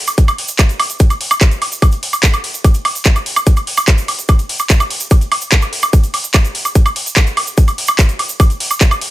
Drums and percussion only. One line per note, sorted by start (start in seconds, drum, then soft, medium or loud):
0.07 closed hi-hat soft
0.07 high woodblock soft
0.07 shaker medium
0.18 kick loud
0.18 closed hi-hat medium
0.18 shaker medium
0.28 closed hi-hat soft
0.28 high woodblock medium
0.28 shaker soft
0.38 open hi-hat loud
0.48 closed hi-hat soft
0.48 shaker medium
0.59 kick loud
0.59 clap loud
0.59 closed hi-hat loud
0.59 high woodblock soft
0.59 shaker medium
0.69 closed hi-hat soft
0.69 shaker soft
0.80 open hi-hat loud
0.80 high woodblock medium
0.90 closed hi-hat soft
0.90 shaker medium
0.99 kick loud
0.99 closed hi-hat loud
0.99 shaker medium
1.10 closed hi-hat soft
1.10 high woodblock soft
1.10 shaker soft
1.21 open hi-hat loud
1.31 closed hi-hat soft
1.31 high woodblock medium
1.31 shaker medium
1.41 kick loud
1.41 clap loud
1.41 closed hi-hat loud
1.41 shaker medium
1.51 closed hi-hat soft
1.51 shaker soft
1.62 open hi-hat loud
1.62 high woodblock soft
1.72 closed hi-hat soft
1.72 shaker medium
1.82 kick loud
1.82 closed hi-hat loud
1.82 high woodblock medium
1.82 shaker medium
1.92 closed hi-hat soft
1.92 shaker soft
2.03 open hi-hat loud
2.13 closed hi-hat soft
2.13 high woodblock soft
2.13 shaker medium
2.23 kick loud
2.23 clap loud
2.23 closed hi-hat medium
2.23 shaker medium
2.33 closed hi-hat soft
2.33 high woodblock medium
2.33 shaker soft
2.44 open hi-hat loud
2.54 closed hi-hat soft
2.54 shaker medium
2.64 kick loud
2.64 closed hi-hat loud
2.64 high woodblock soft
2.64 shaker medium
2.74 closed hi-hat soft
2.74 shaker soft
2.85 open hi-hat loud
2.85 high woodblock medium
2.95 closed hi-hat soft
2.95 shaker medium
3.05 kick loud
3.05 clap loud
3.05 closed hi-hat loud
3.05 shaker medium
3.16 closed hi-hat soft
3.16 high woodblock soft
3.16 shaker soft
3.26 open hi-hat loud
3.36 closed hi-hat soft
3.36 high woodblock medium
3.36 shaker medium
3.47 kick loud
3.47 closed hi-hat medium
3.47 shaker medium
3.57 closed hi-hat soft
3.57 high woodblock soft
3.57 shaker soft
3.67 open hi-hat loud
3.77 closed hi-hat soft
3.77 high woodblock medium
3.77 shaker medium
3.87 kick loud
3.87 clap loud
3.87 closed hi-hat loud
3.87 shaker medium
3.98 closed hi-hat soft
3.98 shaker soft
4.08 open hi-hat loud
4.08 high woodblock soft
4.19 closed hi-hat soft
4.19 shaker medium
4.29 kick loud
4.29 closed hi-hat loud
4.29 high woodblock medium
4.29 shaker medium
4.39 closed hi-hat soft
4.39 shaker soft
4.49 open hi-hat loud
4.59 closed hi-hat soft
4.59 high woodblock soft
4.59 shaker medium
4.70 kick loud
4.70 clap loud
4.70 closed hi-hat medium
4.70 shaker medium
4.80 closed hi-hat soft
4.80 high woodblock medium
4.80 shaker soft
4.90 open hi-hat loud
5.00 closed hi-hat soft
5.00 shaker medium
5.10 kick loud
5.10 closed hi-hat medium
5.10 high woodblock soft
5.10 shaker medium
5.21 closed hi-hat soft
5.21 shaker soft
5.32 open hi-hat loud
5.32 high woodblock medium
5.42 closed hi-hat soft
5.42 shaker medium
5.52 kick loud
5.52 clap loud
5.52 closed hi-hat medium
5.52 shaker medium
5.62 closed hi-hat soft
5.62 high woodblock soft
5.62 shaker soft
5.73 open hi-hat loud
5.83 closed hi-hat soft
5.83 high woodblock medium
5.83 shaker medium
5.93 kick loud
5.93 closed hi-hat loud
5.93 shaker medium
6.03 closed hi-hat soft
6.03 shaker soft
6.14 open hi-hat loud
6.14 high woodblock soft
6.24 closed hi-hat soft
6.24 shaker medium
6.34 kick loud
6.34 clap loud
6.34 closed hi-hat medium
6.34 high woodblock medium
6.34 shaker medium
6.45 closed hi-hat soft
6.45 shaker soft
6.55 open hi-hat loud
6.65 closed hi-hat soft
6.65 high woodblock soft
6.65 shaker medium
6.75 kick loud
6.75 closed hi-hat medium
6.75 shaker medium
6.86 closed hi-hat soft
6.86 high woodblock medium
6.86 shaker soft
6.96 open hi-hat loud
7.06 closed hi-hat soft
7.06 shaker medium
7.16 kick loud
7.16 clap loud
7.16 closed hi-hat medium
7.16 high woodblock soft
7.16 shaker medium
7.27 closed hi-hat soft
7.27 shaker soft
7.37 open hi-hat loud
7.37 high woodblock medium
7.47 closed hi-hat soft
7.47 shaker medium
7.57 kick loud
7.57 closed hi-hat medium
7.57 shaker medium
7.68 closed hi-hat soft
7.68 high woodblock soft
7.68 shaker soft
7.78 open hi-hat loud
7.87 closed hi-hat soft
7.87 high woodblock medium
7.87 shaker medium
7.99 kick loud
7.99 clap loud
7.99 closed hi-hat medium
7.99 shaker medium
8.09 closed hi-hat soft
8.09 shaker soft
8.19 open hi-hat loud
8.19 high woodblock soft
8.29 closed hi-hat soft
8.29 shaker medium
8.40 kick loud
8.40 closed hi-hat medium
8.40 high woodblock medium
8.40 shaker medium
8.50 closed hi-hat soft
8.50 shaker soft
8.60 open hi-hat loud
8.71 closed hi-hat soft
8.71 high woodblock soft
8.71 shaker medium
8.81 kick loud
8.81 clap loud
8.81 closed hi-hat medium
8.81 shaker medium
8.91 closed hi-hat soft
8.91 high woodblock medium
8.91 shaker soft
9.01 open hi-hat loud